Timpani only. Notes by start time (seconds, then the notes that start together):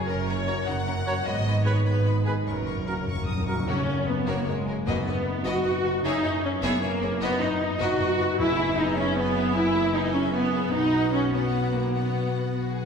2.47 F#2
2.54 F#2
2.62 F#2
2.70 F#2
2.77 F#2
2.86 F#2
2.93 F#2
3.01 F#2
3.07 F#2
3.15 F#2
3.24 F#2
3.32 F#2
3.39 F#2
3.48 F#2
3.55 F#2
3.70 F#2
4.88 F#2
8.39 F#2